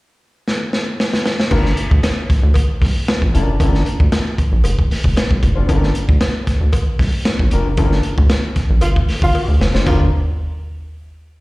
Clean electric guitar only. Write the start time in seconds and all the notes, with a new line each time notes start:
1.51 D4 F4 A#4
3.34 D4 F4 A#4
3.60 D4 F4 A#4
5.55 D4 F4 C5
5.68 D4 F4 A#4
7.52 D4 F4 A#4
7.78 D4 F4 A#4
9.74 D4 F4 C5
9.86 D4 F4 A#4